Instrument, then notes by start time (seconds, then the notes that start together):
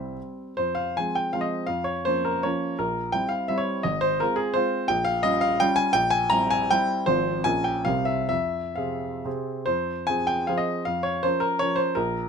grand piano
Already playing: C2 G3 C4 E4 E5
0.57 F2 C5
0.75 F5
0.97 F3 G#3 C4 G#5
1.15 G5
1.33 F3 G#3 C4 F5
1.41 D#5
1.67 F2 F5
1.84 C#5
2.05 F3 A#3 C#4 C5
2.25 A#4
2.43 F3 A#3 C#4 C#5
2.79 A#1 A#4
3.12 G3 C4 E4 G5
3.29 F5
3.48 G3 C4 E4 E5
3.58 C#5
3.83 G#1 D#5
4.01 C5
4.20 G#3 C4 F4 A#4
4.36 G#4
4.54 G#3 C4 F4 C5
4.88 A#1 G5
5.05 F5
5.23 G3 C#4 F4 D#5
5.41 F5
5.60 G3 C#4 F4 G5
5.76 G#5
5.93 A#1 G5
6.10 G#5
6.30 G3 C4 E4 A#5
6.50 G#5
6.71 G3 C4 E4 G5
7.06 G#1 F3 C4 F4 C5
7.44 A#1 F3 C#4 A#4 G#5
7.64 G5
7.85 C2 C3 C4 A#4 F5
8.05 E5
8.29 F2 E5
8.76 C3 C4 G#4 F5
9.25 C3 C4 G#4
9.66 F2 C5
10.07 F3 C4 G#4 G#5
10.27 G5
10.47 F3 C4 G#4 F5
10.58 D#5
10.85 F2 F5
11.03 C#5
11.23 F3 C#4 A#4 C5
11.40 A#4
11.59 F3 C#4 A#4 C#5
11.76 C5
11.95 A#1 A#4